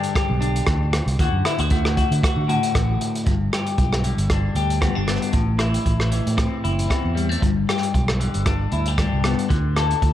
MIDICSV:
0, 0, Header, 1, 4, 480
1, 0, Start_track
1, 0, Key_signature, 1, "major"
1, 0, Tempo, 519481
1, 1094, Time_signature, 4, 2, 24, 8
1, 9360, End_track
2, 0, Start_track
2, 0, Title_t, "Clean electric guitar"
2, 0, Program_c, 0, 27
2, 0, Note_on_c, 0, 43, 64
2, 0, Note_on_c, 0, 50, 59
2, 0, Note_on_c, 0, 62, 53
2, 0, Note_on_c, 0, 67, 60
2, 131, Note_off_c, 0, 67, 0
2, 142, Note_on_c, 0, 67, 60
2, 371, Note_off_c, 0, 62, 0
2, 375, Note_on_c, 0, 62, 58
2, 376, Note_off_c, 0, 43, 0
2, 1071, Note_off_c, 0, 67, 0
2, 1097, Note_off_c, 0, 50, 0
2, 1107, Note_on_c, 0, 50, 63
2, 1116, Note_on_c, 0, 66, 58
2, 1342, Note_off_c, 0, 66, 0
2, 1346, Note_on_c, 0, 64, 66
2, 1373, Note_off_c, 0, 62, 0
2, 1474, Note_off_c, 0, 64, 0
2, 1474, Note_on_c, 0, 66, 53
2, 1578, Note_off_c, 0, 66, 0
2, 1585, Note_on_c, 0, 57, 67
2, 1591, Note_on_c, 0, 66, 55
2, 1811, Note_off_c, 0, 66, 0
2, 1822, Note_on_c, 0, 66, 53
2, 2054, Note_off_c, 0, 66, 0
2, 2066, Note_on_c, 0, 66, 59
2, 2291, Note_off_c, 0, 66, 0
2, 2293, Note_on_c, 0, 45, 67
2, 2302, Note_on_c, 0, 66, 66
2, 2990, Note_off_c, 0, 66, 0
2, 2991, Note_off_c, 0, 57, 0
2, 3011, Note_off_c, 0, 45, 0
2, 3011, Note_on_c, 0, 43, 66
2, 3262, Note_on_c, 0, 67, 52
2, 3720, Note_off_c, 0, 50, 0
2, 3731, Note_on_c, 0, 50, 46
2, 3987, Note_on_c, 0, 62, 50
2, 4203, Note_off_c, 0, 67, 0
2, 4214, Note_on_c, 0, 67, 56
2, 4439, Note_off_c, 0, 43, 0
2, 4440, Note_off_c, 0, 62, 0
2, 4444, Note_on_c, 0, 59, 52
2, 4450, Note_on_c, 0, 43, 55
2, 4577, Note_off_c, 0, 59, 0
2, 4577, Note_on_c, 0, 62, 45
2, 4685, Note_on_c, 0, 59, 55
2, 4902, Note_off_c, 0, 59, 0
2, 4904, Note_off_c, 0, 43, 0
2, 4906, Note_off_c, 0, 67, 0
2, 4918, Note_on_c, 0, 45, 65
2, 4927, Note_off_c, 0, 62, 0
2, 4931, Note_off_c, 0, 50, 0
2, 5160, Note_on_c, 0, 64, 58
2, 5646, Note_on_c, 0, 52, 49
2, 5886, Note_on_c, 0, 60, 54
2, 6124, Note_off_c, 0, 64, 0
2, 6135, Note_on_c, 0, 64, 57
2, 6362, Note_off_c, 0, 60, 0
2, 6365, Note_off_c, 0, 45, 0
2, 6366, Note_on_c, 0, 40, 54
2, 6373, Note_on_c, 0, 60, 49
2, 6607, Note_on_c, 0, 55, 50
2, 6737, Note_off_c, 0, 55, 0
2, 6737, Note_on_c, 0, 57, 49
2, 6824, Note_off_c, 0, 52, 0
2, 6827, Note_off_c, 0, 60, 0
2, 6835, Note_off_c, 0, 40, 0
2, 6839, Note_on_c, 0, 43, 60
2, 6849, Note_off_c, 0, 57, 0
2, 6854, Note_off_c, 0, 64, 0
2, 7103, Note_on_c, 0, 67, 56
2, 7575, Note_on_c, 0, 50, 52
2, 7816, Note_on_c, 0, 62, 57
2, 8059, Note_off_c, 0, 67, 0
2, 8063, Note_on_c, 0, 64, 56
2, 8203, Note_off_c, 0, 64, 0
2, 8203, Note_on_c, 0, 67, 48
2, 8287, Note_off_c, 0, 43, 0
2, 8297, Note_on_c, 0, 43, 59
2, 8298, Note_off_c, 0, 62, 0
2, 8302, Note_on_c, 0, 62, 50
2, 8547, Note_on_c, 0, 59, 56
2, 8750, Note_off_c, 0, 43, 0
2, 8755, Note_off_c, 0, 59, 0
2, 8758, Note_off_c, 0, 50, 0
2, 8769, Note_on_c, 0, 50, 65
2, 8783, Note_off_c, 0, 67, 0
2, 9020, Note_on_c, 0, 69, 56
2, 9360, Note_off_c, 0, 50, 0
2, 9360, Note_off_c, 0, 62, 0
2, 9360, Note_off_c, 0, 69, 0
2, 9360, End_track
3, 0, Start_track
3, 0, Title_t, "Fingered electric bass"
3, 0, Program_c, 1, 33
3, 274, Note_on_c, 1, 35, 82
3, 557, Note_off_c, 1, 35, 0
3, 619, Note_on_c, 1, 38, 82
3, 922, Note_off_c, 1, 38, 0
3, 980, Note_on_c, 1, 36, 83
3, 1071, Note_off_c, 1, 36, 0
3, 1099, Note_on_c, 1, 38, 107
3, 1206, Note_off_c, 1, 38, 0
3, 1218, Note_on_c, 1, 42, 83
3, 1310, Note_off_c, 1, 42, 0
3, 1466, Note_on_c, 1, 38, 88
3, 1859, Note_off_c, 1, 38, 0
3, 1950, Note_on_c, 1, 50, 68
3, 2036, Note_off_c, 1, 50, 0
3, 2185, Note_on_c, 1, 50, 72
3, 2381, Note_off_c, 1, 50, 0
3, 2543, Note_on_c, 1, 33, 86
3, 2735, Note_off_c, 1, 33, 0
3, 3019, Note_on_c, 1, 31, 87
3, 3213, Note_off_c, 1, 31, 0
3, 3495, Note_on_c, 1, 35, 73
3, 3798, Note_off_c, 1, 35, 0
3, 3856, Note_on_c, 1, 31, 75
3, 4144, Note_off_c, 1, 31, 0
3, 4204, Note_on_c, 1, 38, 79
3, 4512, Note_off_c, 1, 38, 0
3, 4584, Note_on_c, 1, 31, 69
3, 4780, Note_off_c, 1, 31, 0
3, 4932, Note_on_c, 1, 33, 84
3, 5326, Note_off_c, 1, 33, 0
3, 5417, Note_on_c, 1, 33, 75
3, 5720, Note_off_c, 1, 33, 0
3, 5790, Note_on_c, 1, 45, 70
3, 5984, Note_off_c, 1, 45, 0
3, 6143, Note_on_c, 1, 30, 86
3, 6336, Note_off_c, 1, 30, 0
3, 6509, Note_on_c, 1, 40, 73
3, 6793, Note_off_c, 1, 40, 0
3, 6859, Note_on_c, 1, 31, 78
3, 7053, Note_off_c, 1, 31, 0
3, 7336, Note_on_c, 1, 35, 80
3, 7641, Note_off_c, 1, 35, 0
3, 7717, Note_on_c, 1, 31, 70
3, 7998, Note_off_c, 1, 31, 0
3, 8058, Note_on_c, 1, 38, 76
3, 8362, Note_off_c, 1, 38, 0
3, 8434, Note_on_c, 1, 36, 67
3, 8628, Note_off_c, 1, 36, 0
3, 8781, Note_on_c, 1, 38, 87
3, 9173, Note_off_c, 1, 38, 0
3, 9264, Note_on_c, 1, 38, 80
3, 9360, Note_off_c, 1, 38, 0
3, 9360, End_track
4, 0, Start_track
4, 0, Title_t, "Drums"
4, 33, Note_on_c, 9, 42, 44
4, 125, Note_off_c, 9, 42, 0
4, 144, Note_on_c, 9, 36, 101
4, 148, Note_on_c, 9, 37, 78
4, 148, Note_on_c, 9, 42, 51
4, 236, Note_off_c, 9, 36, 0
4, 240, Note_off_c, 9, 37, 0
4, 240, Note_off_c, 9, 42, 0
4, 386, Note_on_c, 9, 42, 47
4, 479, Note_off_c, 9, 42, 0
4, 516, Note_on_c, 9, 42, 49
4, 608, Note_off_c, 9, 42, 0
4, 615, Note_on_c, 9, 37, 70
4, 615, Note_on_c, 9, 42, 43
4, 620, Note_on_c, 9, 36, 65
4, 707, Note_off_c, 9, 37, 0
4, 707, Note_off_c, 9, 42, 0
4, 712, Note_off_c, 9, 36, 0
4, 860, Note_on_c, 9, 37, 74
4, 860, Note_on_c, 9, 42, 44
4, 953, Note_off_c, 9, 37, 0
4, 953, Note_off_c, 9, 42, 0
4, 996, Note_on_c, 9, 42, 42
4, 1088, Note_off_c, 9, 42, 0
4, 1102, Note_on_c, 9, 36, 82
4, 1104, Note_on_c, 9, 42, 48
4, 1194, Note_off_c, 9, 36, 0
4, 1196, Note_off_c, 9, 42, 0
4, 1341, Note_on_c, 9, 37, 60
4, 1341, Note_on_c, 9, 42, 46
4, 1433, Note_off_c, 9, 37, 0
4, 1433, Note_off_c, 9, 42, 0
4, 1465, Note_on_c, 9, 42, 41
4, 1557, Note_off_c, 9, 42, 0
4, 1573, Note_on_c, 9, 42, 46
4, 1579, Note_on_c, 9, 36, 65
4, 1665, Note_off_c, 9, 42, 0
4, 1672, Note_off_c, 9, 36, 0
4, 1711, Note_on_c, 9, 37, 57
4, 1803, Note_off_c, 9, 37, 0
4, 1822, Note_on_c, 9, 36, 57
4, 1823, Note_on_c, 9, 42, 48
4, 1915, Note_off_c, 9, 36, 0
4, 1916, Note_off_c, 9, 42, 0
4, 1958, Note_on_c, 9, 42, 51
4, 2050, Note_off_c, 9, 42, 0
4, 2065, Note_on_c, 9, 36, 98
4, 2070, Note_on_c, 9, 37, 74
4, 2070, Note_on_c, 9, 42, 56
4, 2157, Note_off_c, 9, 36, 0
4, 2163, Note_off_c, 9, 37, 0
4, 2163, Note_off_c, 9, 42, 0
4, 2304, Note_on_c, 9, 42, 45
4, 2396, Note_off_c, 9, 42, 0
4, 2431, Note_on_c, 9, 42, 56
4, 2524, Note_off_c, 9, 42, 0
4, 2541, Note_on_c, 9, 36, 74
4, 2542, Note_on_c, 9, 37, 69
4, 2542, Note_on_c, 9, 42, 56
4, 2633, Note_off_c, 9, 36, 0
4, 2634, Note_off_c, 9, 37, 0
4, 2634, Note_off_c, 9, 42, 0
4, 2782, Note_on_c, 9, 42, 56
4, 2874, Note_off_c, 9, 42, 0
4, 2915, Note_on_c, 9, 42, 49
4, 3007, Note_off_c, 9, 42, 0
4, 3016, Note_on_c, 9, 42, 43
4, 3018, Note_on_c, 9, 36, 79
4, 3108, Note_off_c, 9, 42, 0
4, 3111, Note_off_c, 9, 36, 0
4, 3262, Note_on_c, 9, 37, 63
4, 3262, Note_on_c, 9, 42, 39
4, 3354, Note_off_c, 9, 37, 0
4, 3354, Note_off_c, 9, 42, 0
4, 3387, Note_on_c, 9, 42, 41
4, 3479, Note_off_c, 9, 42, 0
4, 3493, Note_on_c, 9, 42, 43
4, 3496, Note_on_c, 9, 36, 62
4, 3586, Note_off_c, 9, 42, 0
4, 3588, Note_off_c, 9, 36, 0
4, 3628, Note_on_c, 9, 37, 55
4, 3720, Note_off_c, 9, 37, 0
4, 3734, Note_on_c, 9, 42, 46
4, 3826, Note_off_c, 9, 42, 0
4, 3865, Note_on_c, 9, 42, 41
4, 3958, Note_off_c, 9, 42, 0
4, 3972, Note_on_c, 9, 37, 65
4, 3972, Note_on_c, 9, 42, 48
4, 3973, Note_on_c, 9, 36, 86
4, 4064, Note_off_c, 9, 37, 0
4, 4064, Note_off_c, 9, 42, 0
4, 4065, Note_off_c, 9, 36, 0
4, 4210, Note_on_c, 9, 42, 42
4, 4302, Note_off_c, 9, 42, 0
4, 4346, Note_on_c, 9, 42, 43
4, 4438, Note_off_c, 9, 42, 0
4, 4452, Note_on_c, 9, 36, 66
4, 4452, Note_on_c, 9, 37, 70
4, 4452, Note_on_c, 9, 42, 43
4, 4544, Note_off_c, 9, 36, 0
4, 4544, Note_off_c, 9, 37, 0
4, 4544, Note_off_c, 9, 42, 0
4, 4692, Note_on_c, 9, 37, 56
4, 4692, Note_on_c, 9, 42, 41
4, 4785, Note_off_c, 9, 37, 0
4, 4785, Note_off_c, 9, 42, 0
4, 4826, Note_on_c, 9, 42, 44
4, 4918, Note_off_c, 9, 42, 0
4, 4924, Note_on_c, 9, 42, 41
4, 4930, Note_on_c, 9, 36, 76
4, 5016, Note_off_c, 9, 42, 0
4, 5022, Note_off_c, 9, 36, 0
4, 5164, Note_on_c, 9, 37, 54
4, 5164, Note_on_c, 9, 42, 45
4, 5257, Note_off_c, 9, 37, 0
4, 5257, Note_off_c, 9, 42, 0
4, 5306, Note_on_c, 9, 42, 47
4, 5398, Note_off_c, 9, 42, 0
4, 5413, Note_on_c, 9, 36, 56
4, 5413, Note_on_c, 9, 42, 44
4, 5505, Note_off_c, 9, 36, 0
4, 5506, Note_off_c, 9, 42, 0
4, 5543, Note_on_c, 9, 37, 50
4, 5635, Note_off_c, 9, 37, 0
4, 5653, Note_on_c, 9, 42, 46
4, 5745, Note_off_c, 9, 42, 0
4, 5793, Note_on_c, 9, 42, 45
4, 5885, Note_off_c, 9, 42, 0
4, 5894, Note_on_c, 9, 36, 91
4, 5896, Note_on_c, 9, 37, 68
4, 5896, Note_on_c, 9, 42, 52
4, 5986, Note_off_c, 9, 36, 0
4, 5988, Note_off_c, 9, 37, 0
4, 5988, Note_off_c, 9, 42, 0
4, 6141, Note_on_c, 9, 42, 45
4, 6234, Note_off_c, 9, 42, 0
4, 6274, Note_on_c, 9, 42, 47
4, 6366, Note_off_c, 9, 42, 0
4, 6378, Note_on_c, 9, 36, 70
4, 6382, Note_on_c, 9, 37, 63
4, 6382, Note_on_c, 9, 42, 51
4, 6470, Note_off_c, 9, 36, 0
4, 6474, Note_off_c, 9, 37, 0
4, 6474, Note_off_c, 9, 42, 0
4, 6628, Note_on_c, 9, 42, 43
4, 6721, Note_off_c, 9, 42, 0
4, 6759, Note_on_c, 9, 42, 47
4, 6852, Note_off_c, 9, 42, 0
4, 6859, Note_on_c, 9, 36, 81
4, 6863, Note_on_c, 9, 42, 46
4, 6952, Note_off_c, 9, 36, 0
4, 6955, Note_off_c, 9, 42, 0
4, 7105, Note_on_c, 9, 37, 57
4, 7105, Note_on_c, 9, 42, 41
4, 7197, Note_off_c, 9, 37, 0
4, 7197, Note_off_c, 9, 42, 0
4, 7235, Note_on_c, 9, 42, 46
4, 7327, Note_off_c, 9, 42, 0
4, 7339, Note_on_c, 9, 36, 59
4, 7342, Note_on_c, 9, 42, 44
4, 7431, Note_off_c, 9, 36, 0
4, 7434, Note_off_c, 9, 42, 0
4, 7467, Note_on_c, 9, 37, 60
4, 7560, Note_off_c, 9, 37, 0
4, 7583, Note_on_c, 9, 42, 44
4, 7676, Note_off_c, 9, 42, 0
4, 7707, Note_on_c, 9, 42, 42
4, 7799, Note_off_c, 9, 42, 0
4, 7816, Note_on_c, 9, 37, 62
4, 7816, Note_on_c, 9, 42, 51
4, 7819, Note_on_c, 9, 36, 88
4, 7908, Note_off_c, 9, 37, 0
4, 7908, Note_off_c, 9, 42, 0
4, 7911, Note_off_c, 9, 36, 0
4, 8055, Note_on_c, 9, 42, 42
4, 8147, Note_off_c, 9, 42, 0
4, 8184, Note_on_c, 9, 42, 45
4, 8276, Note_off_c, 9, 42, 0
4, 8297, Note_on_c, 9, 36, 71
4, 8298, Note_on_c, 9, 37, 65
4, 8298, Note_on_c, 9, 42, 43
4, 8390, Note_off_c, 9, 36, 0
4, 8390, Note_off_c, 9, 37, 0
4, 8390, Note_off_c, 9, 42, 0
4, 8537, Note_on_c, 9, 37, 61
4, 8537, Note_on_c, 9, 42, 43
4, 8630, Note_off_c, 9, 37, 0
4, 8630, Note_off_c, 9, 42, 0
4, 8675, Note_on_c, 9, 42, 44
4, 8768, Note_off_c, 9, 42, 0
4, 8782, Note_on_c, 9, 36, 73
4, 8783, Note_on_c, 9, 42, 43
4, 8874, Note_off_c, 9, 36, 0
4, 8876, Note_off_c, 9, 42, 0
4, 9023, Note_on_c, 9, 37, 59
4, 9023, Note_on_c, 9, 42, 38
4, 9115, Note_off_c, 9, 37, 0
4, 9115, Note_off_c, 9, 42, 0
4, 9156, Note_on_c, 9, 42, 43
4, 9248, Note_off_c, 9, 42, 0
4, 9260, Note_on_c, 9, 36, 62
4, 9262, Note_on_c, 9, 42, 48
4, 9353, Note_off_c, 9, 36, 0
4, 9355, Note_off_c, 9, 42, 0
4, 9360, End_track
0, 0, End_of_file